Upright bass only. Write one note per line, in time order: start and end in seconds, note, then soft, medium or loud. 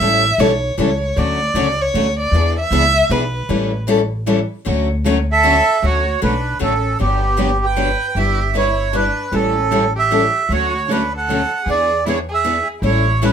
0.00 0.31 A1 medium
0.38 0.72 B1 medium
0.78 1.11 C#2 medium
1.16 1.48 D2 medium
1.54 1.88 C#2 medium
1.94 2.27 D2 medium
2.31 2.63 E2 medium
2.71 3.04 C#2 medium
3.10 3.43 B1 medium
3.49 4.42 A1 medium
4.67 5.59 D2 medium
5.83 6.14 D2 medium
6.22 6.55 B1 medium
6.61 6.93 A1 medium
7.01 7.93 G1 medium
8.15 9.09 G1 medium
9.32 10.26 A1 medium
10.49 11.43 D2 medium
11.66 12.60 E2 medium
12.82 13.33 A1 medium